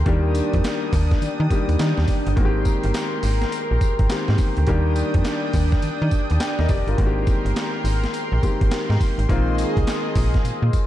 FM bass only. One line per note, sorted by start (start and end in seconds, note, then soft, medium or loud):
0.06 0.42 D#2 loud
0.54 0.62 F2 loud
0.93 1.14 D#2 loud
1.22 1.29 D#3 medium
1.40 1.48 D#3 loud
1.69 1.77 D#2 medium
1.80 1.93 D#3 loud
1.98 2.06 D#2 medium
2.27 2.35 G1 loud
2.37 2.73 G#1 loud
2.84 2.92 G1 medium
3.23 3.45 G#1 loud
3.71 3.79 A#1 medium
3.99 4.07 G#1 medium
4.29 4.36 G#2 medium
4.58 4.65 D2 medium
4.68 5.03 D#2 loud
5.15 5.23 F2 medium
5.54 5.76 D#2 loud
5.83 5.91 D#3 soft
6.02 6.10 D#3 loud
6.31 6.39 D#2 medium
6.59 6.67 D#2 medium
6.69 6.83 F1 medium
6.87 6.95 G1 medium
6.98 7.34 G#1 loud
7.45 7.53 G1 medium
7.84 8.06 G#1 medium
8.32 8.40 A#1 loud
8.61 8.69 G#1 medium
8.90 8.98 G#2 loud
9.18 9.26 G#1 medium
9.29 9.65 A#1 loud
9.77 9.85 C2 medium
10.16 10.37 A#1 loud
10.44 10.52 A#2 soft
10.62 10.71 A#2 medium